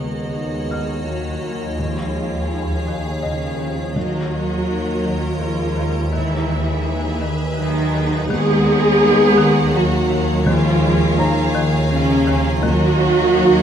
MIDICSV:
0, 0, Header, 1, 12, 480
1, 0, Start_track
1, 0, Key_signature, -6, "minor"
1, 0, Tempo, 722892
1, 1187, Time_signature, 3, 2, 24, 8
1, 9046, End_track
2, 0, Start_track
2, 0, Title_t, "Felt piano"
2, 0, Program_c, 0, 0
2, 0, Control_c, 0, 64, 127
2, 473, Note_on_c, 0, 89, 30
2, 1199, Control_c, 0, 64, 0
2, 1289, Control_c, 0, 64, 127
2, 1884, Note_off_c, 0, 89, 0
2, 2141, Note_on_c, 0, 75, 41
2, 2640, Control_c, 0, 64, 0
2, 2766, Control_c, 0, 64, 127
2, 3558, Note_off_c, 0, 75, 0
2, 4080, Control_c, 0, 64, 0
2, 4205, Control_c, 0, 64, 127
2, 5521, Control_c, 0, 64, 0
2, 5629, Control_c, 0, 64, 127
2, 6959, Control_c, 0, 64, 0
2, 7079, Control_c, 0, 64, 127
2, 7428, Note_on_c, 0, 82, 58
2, 8400, Control_c, 0, 64, 0
2, 8523, Control_c, 0, 64, 127
2, 8841, Note_off_c, 0, 82, 0
2, 9046, End_track
3, 0, Start_track
3, 0, Title_t, "Violin section"
3, 0, Program_c, 1, 48
3, 0, Note_on_c, 1, 78, 50
3, 1159, Note_off_c, 1, 78, 0
3, 1191, Note_on_c, 1, 77, 38
3, 2629, Note_off_c, 1, 77, 0
3, 2631, Note_on_c, 1, 75, 44
3, 4043, Note_off_c, 1, 75, 0
3, 4070, Note_on_c, 1, 76, 58
3, 5482, Note_off_c, 1, 76, 0
3, 5513, Note_on_c, 1, 78, 70
3, 6924, Note_off_c, 1, 78, 0
3, 6947, Note_on_c, 1, 77, 80
3, 8360, Note_off_c, 1, 77, 0
3, 8385, Note_on_c, 1, 75, 71
3, 9046, Note_off_c, 1, 75, 0
3, 9046, End_track
4, 0, Start_track
4, 0, Title_t, "Ambient pad"
4, 0, Program_c, 2, 92
4, 0, Note_on_c, 2, 66, 69
4, 0, Note_on_c, 2, 73, 63
4, 0, Note_on_c, 2, 75, 64
4, 1162, Note_off_c, 2, 75, 0
4, 1163, Note_off_c, 2, 66, 0
4, 1181, Note_on_c, 2, 77, 55
4, 1185, Note_on_c, 2, 68, 58
4, 2603, Note_off_c, 2, 73, 0
4, 2624, Note_off_c, 2, 77, 0
4, 2626, Note_off_c, 2, 68, 0
4, 2630, Note_on_c, 2, 73, 54
4, 2632, Note_on_c, 2, 70, 51
4, 2633, Note_on_c, 2, 82, 56
4, 4042, Note_off_c, 2, 73, 0
4, 4066, Note_on_c, 2, 83, 61
4, 4068, Note_on_c, 2, 68, 63
4, 4068, Note_on_c, 2, 71, 53
4, 4070, Note_off_c, 2, 70, 0
4, 4070, Note_off_c, 2, 82, 0
4, 5507, Note_off_c, 2, 83, 0
4, 5508, Note_off_c, 2, 68, 0
4, 5508, Note_off_c, 2, 71, 0
4, 5515, Note_on_c, 2, 66, 65
4, 5515, Note_on_c, 2, 73, 67
4, 5516, Note_on_c, 2, 82, 60
4, 6949, Note_on_c, 2, 80, 60
4, 6951, Note_off_c, 2, 66, 0
4, 6951, Note_on_c, 2, 65, 65
4, 6952, Note_off_c, 2, 82, 0
4, 8381, Note_off_c, 2, 73, 0
4, 8388, Note_off_c, 2, 80, 0
4, 8389, Note_off_c, 2, 65, 0
4, 8389, Note_on_c, 2, 73, 64
4, 8390, Note_on_c, 2, 82, 64
4, 8391, Note_on_c, 2, 63, 67
4, 9046, Note_off_c, 2, 63, 0
4, 9046, Note_off_c, 2, 73, 0
4, 9046, Note_off_c, 2, 82, 0
4, 9046, End_track
5, 0, Start_track
5, 0, Title_t, "Violin section"
5, 0, Program_c, 3, 48
5, 0, Note_on_c, 3, 70, 53
5, 0, Note_on_c, 3, 73, 50
5, 1160, Note_off_c, 3, 70, 0
5, 1181, Note_on_c, 3, 68, 47
5, 2599, Note_off_c, 3, 73, 0
5, 2624, Note_off_c, 3, 68, 0
5, 2632, Note_on_c, 3, 70, 50
5, 2632, Note_on_c, 3, 73, 50
5, 4043, Note_off_c, 3, 70, 0
5, 4043, Note_off_c, 3, 73, 0
5, 4068, Note_on_c, 3, 68, 59
5, 4069, Note_on_c, 3, 71, 61
5, 5481, Note_off_c, 3, 68, 0
5, 5508, Note_off_c, 3, 71, 0
5, 5510, Note_on_c, 3, 70, 74
5, 5514, Note_on_c, 3, 73, 74
5, 6922, Note_off_c, 3, 70, 0
5, 6953, Note_on_c, 3, 68, 84
5, 8364, Note_off_c, 3, 68, 0
5, 8364, Note_off_c, 3, 73, 0
5, 8383, Note_on_c, 3, 73, 80
5, 8385, Note_on_c, 3, 70, 81
5, 9046, Note_off_c, 3, 70, 0
5, 9046, Note_off_c, 3, 73, 0
5, 9046, End_track
6, 0, Start_track
6, 0, Title_t, "Viola section"
6, 0, Program_c, 4, 48
6, 0, Note_on_c, 4, 68, 66
6, 681, Note_off_c, 4, 68, 0
6, 707, Note_on_c, 4, 66, 45
6, 1184, Note_on_c, 4, 65, 57
6, 1187, Note_off_c, 4, 66, 0
6, 1891, Note_off_c, 4, 65, 0
6, 2148, Note_on_c, 4, 61, 58
6, 2601, Note_off_c, 4, 61, 0
6, 2630, Note_on_c, 4, 66, 71
6, 3589, Note_off_c, 4, 66, 0
6, 3590, Note_on_c, 4, 65, 71
6, 4068, Note_off_c, 4, 65, 0
6, 4071, Note_on_c, 4, 64, 78
6, 4775, Note_off_c, 4, 64, 0
6, 5027, Note_on_c, 4, 63, 92
6, 5480, Note_off_c, 4, 63, 0
6, 5508, Note_on_c, 4, 68, 124
6, 6467, Note_off_c, 4, 68, 0
6, 6469, Note_on_c, 4, 66, 92
6, 6948, Note_off_c, 4, 66, 0
6, 6949, Note_on_c, 4, 65, 101
6, 7654, Note_off_c, 4, 65, 0
6, 7905, Note_on_c, 4, 61, 95
6, 8360, Note_off_c, 4, 61, 0
6, 8386, Note_on_c, 4, 66, 119
6, 9046, Note_off_c, 4, 66, 0
6, 9046, End_track
7, 0, Start_track
7, 0, Title_t, "French horn section"
7, 0, Program_c, 5, 60
7, 0, Note_on_c, 5, 59, 55
7, 681, Note_off_c, 5, 59, 0
7, 703, Note_on_c, 5, 58, 37
7, 1185, Note_off_c, 5, 58, 0
7, 1189, Note_on_c, 5, 56, 47
7, 1894, Note_off_c, 5, 56, 0
7, 2149, Note_on_c, 5, 53, 46
7, 2602, Note_off_c, 5, 53, 0
7, 2630, Note_on_c, 5, 58, 58
7, 3589, Note_off_c, 5, 58, 0
7, 3593, Note_on_c, 5, 56, 58
7, 4062, Note_off_c, 5, 56, 0
7, 4070, Note_on_c, 5, 56, 65
7, 4774, Note_off_c, 5, 56, 0
7, 5027, Note_on_c, 5, 54, 77
7, 5481, Note_off_c, 5, 54, 0
7, 5502, Note_on_c, 5, 59, 108
7, 6465, Note_off_c, 5, 59, 0
7, 6465, Note_on_c, 5, 58, 77
7, 6943, Note_on_c, 5, 56, 87
7, 6946, Note_off_c, 5, 58, 0
7, 7665, Note_off_c, 5, 56, 0
7, 7906, Note_on_c, 5, 53, 77
7, 8360, Note_off_c, 5, 53, 0
7, 8379, Note_on_c, 5, 58, 92
7, 9046, Note_off_c, 5, 58, 0
7, 9046, End_track
8, 0, Start_track
8, 0, Title_t, "Cello section"
8, 0, Program_c, 6, 48
8, 0, Note_on_c, 6, 56, 64
8, 680, Note_off_c, 6, 56, 0
8, 713, Note_on_c, 6, 54, 42
8, 1190, Note_off_c, 6, 54, 0
8, 1192, Note_on_c, 6, 53, 49
8, 1895, Note_off_c, 6, 53, 0
8, 2151, Note_on_c, 6, 49, 54
8, 2602, Note_off_c, 6, 49, 0
8, 2631, Note_on_c, 6, 54, 68
8, 3589, Note_off_c, 6, 54, 0
8, 3593, Note_on_c, 6, 53, 59
8, 4070, Note_off_c, 6, 53, 0
8, 4070, Note_on_c, 6, 52, 66
8, 4774, Note_off_c, 6, 52, 0
8, 5033, Note_on_c, 6, 51, 77
8, 5484, Note_off_c, 6, 51, 0
8, 5513, Note_on_c, 6, 56, 95
8, 6468, Note_on_c, 6, 54, 73
8, 6470, Note_off_c, 6, 56, 0
8, 6938, Note_off_c, 6, 54, 0
8, 6950, Note_on_c, 6, 53, 84
8, 7669, Note_off_c, 6, 53, 0
8, 7909, Note_on_c, 6, 49, 78
8, 8361, Note_off_c, 6, 49, 0
8, 8386, Note_on_c, 6, 54, 93
8, 9046, Note_off_c, 6, 54, 0
8, 9046, End_track
9, 0, Start_track
9, 0, Title_t, "Marimba"
9, 0, Program_c, 7, 12
9, 0, Note_on_c, 7, 51, 36
9, 133, Note_off_c, 7, 51, 0
9, 226, Note_on_c, 7, 63, 32
9, 371, Note_off_c, 7, 63, 0
9, 468, Note_on_c, 7, 51, 46
9, 612, Note_off_c, 7, 51, 0
9, 710, Note_on_c, 7, 51, 32
9, 853, Note_off_c, 7, 51, 0
9, 949, Note_on_c, 7, 51, 37
9, 1093, Note_off_c, 7, 51, 0
9, 1187, Note_on_c, 7, 51, 52
9, 1331, Note_off_c, 7, 51, 0
9, 1431, Note_on_c, 7, 51, 35
9, 1574, Note_off_c, 7, 51, 0
9, 1670, Note_on_c, 7, 63, 34
9, 1813, Note_off_c, 7, 63, 0
9, 1913, Note_on_c, 7, 51, 57
9, 2055, Note_off_c, 7, 51, 0
9, 2153, Note_on_c, 7, 51, 37
9, 2295, Note_off_c, 7, 51, 0
9, 2394, Note_on_c, 7, 51, 41
9, 2536, Note_off_c, 7, 51, 0
9, 2633, Note_on_c, 7, 51, 62
9, 2775, Note_off_c, 7, 51, 0
9, 2877, Note_on_c, 7, 51, 40
9, 3018, Note_off_c, 7, 51, 0
9, 3115, Note_on_c, 7, 63, 41
9, 3256, Note_off_c, 7, 63, 0
9, 3350, Note_on_c, 7, 51, 64
9, 3493, Note_off_c, 7, 51, 0
9, 3593, Note_on_c, 7, 51, 46
9, 3735, Note_off_c, 7, 51, 0
9, 3832, Note_on_c, 7, 51, 50
9, 3975, Note_off_c, 7, 51, 0
9, 4069, Note_on_c, 7, 51, 72
9, 4212, Note_off_c, 7, 51, 0
9, 4312, Note_on_c, 7, 51, 50
9, 4455, Note_off_c, 7, 51, 0
9, 4554, Note_on_c, 7, 63, 47
9, 4696, Note_off_c, 7, 63, 0
9, 4789, Note_on_c, 7, 51, 78
9, 4933, Note_off_c, 7, 51, 0
9, 5030, Note_on_c, 7, 51, 55
9, 5173, Note_off_c, 7, 51, 0
9, 5270, Note_on_c, 7, 51, 60
9, 5413, Note_off_c, 7, 51, 0
9, 5511, Note_on_c, 7, 51, 85
9, 5654, Note_off_c, 7, 51, 0
9, 5749, Note_on_c, 7, 51, 62
9, 5893, Note_off_c, 7, 51, 0
9, 5988, Note_on_c, 7, 63, 56
9, 6132, Note_off_c, 7, 63, 0
9, 6228, Note_on_c, 7, 51, 98
9, 6372, Note_off_c, 7, 51, 0
9, 6469, Note_on_c, 7, 51, 63
9, 6612, Note_off_c, 7, 51, 0
9, 6709, Note_on_c, 7, 51, 70
9, 6853, Note_off_c, 7, 51, 0
9, 6949, Note_on_c, 7, 51, 92
9, 7092, Note_off_c, 7, 51, 0
9, 7190, Note_on_c, 7, 51, 67
9, 7333, Note_off_c, 7, 51, 0
9, 7426, Note_on_c, 7, 63, 59
9, 7570, Note_off_c, 7, 63, 0
9, 7667, Note_on_c, 7, 51, 96
9, 7811, Note_off_c, 7, 51, 0
9, 7906, Note_on_c, 7, 51, 64
9, 8050, Note_off_c, 7, 51, 0
9, 8147, Note_on_c, 7, 51, 69
9, 8291, Note_off_c, 7, 51, 0
9, 8386, Note_on_c, 7, 51, 89
9, 8530, Note_off_c, 7, 51, 0
9, 8624, Note_on_c, 7, 51, 63
9, 8769, Note_off_c, 7, 51, 0
9, 8865, Note_on_c, 7, 63, 59
9, 9010, Note_off_c, 7, 63, 0
9, 9046, End_track
10, 0, Start_track
10, 0, Title_t, "Timpani"
10, 0, Program_c, 8, 47
10, 0, Note_on_c, 8, 51, 59
10, 438, Note_off_c, 8, 51, 0
10, 1188, Note_on_c, 8, 51, 67
10, 1881, Note_off_c, 8, 51, 0
10, 2627, Note_on_c, 8, 51, 65
10, 3321, Note_off_c, 8, 51, 0
10, 5508, Note_on_c, 8, 51, 74
10, 6201, Note_off_c, 8, 51, 0
10, 6945, Note_on_c, 8, 51, 80
10, 7640, Note_off_c, 8, 51, 0
10, 8386, Note_on_c, 8, 51, 83
10, 9046, Note_off_c, 8, 51, 0
10, 9046, End_track
11, 0, Start_track
11, 0, Title_t, "Double bass section"
11, 0, Program_c, 10, 48
11, 0, Note_on_c, 10, 39, 50
11, 2602, Note_off_c, 10, 39, 0
11, 2630, Note_on_c, 10, 39, 45
11, 5482, Note_off_c, 10, 39, 0
11, 5508, Note_on_c, 10, 39, 67
11, 8361, Note_off_c, 10, 39, 0
11, 8387, Note_on_c, 10, 39, 78
11, 9046, Note_off_c, 10, 39, 0
11, 9046, End_track
12, 0, Start_track
12, 0, Title_t, "Synth drone"
12, 0, Program_c, 11, 95
12, 0, Note_on_c, 11, 39, 66
12, 2599, Note_off_c, 11, 39, 0
12, 2627, Note_on_c, 11, 39, 74
12, 5480, Note_off_c, 11, 39, 0
12, 5511, Note_on_c, 11, 39, 85
12, 8362, Note_off_c, 11, 39, 0
12, 8389, Note_on_c, 11, 39, 88
12, 9046, Note_off_c, 11, 39, 0
12, 9046, End_track
0, 0, End_of_file